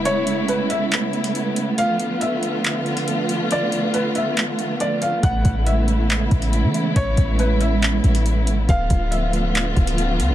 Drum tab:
HH |x-x-x-x-x-xxx-x-|x-x-x-x-x-xxx-x-|x-x-x-x-x-x-x-x-|x-x-x-x-x-xxx-x-|
CP |--------x-------|--------x-------|--------x-------|--------x-------|
BD |----------------|----------------|----------------|o-o-------o-----|

HH |x-x-x-x-x-xxx-x-|x-x-x-x-x-xxx-x-|
CP |--------x-------|--------x-------|
BD |o-o-------------|o-o-------o-----|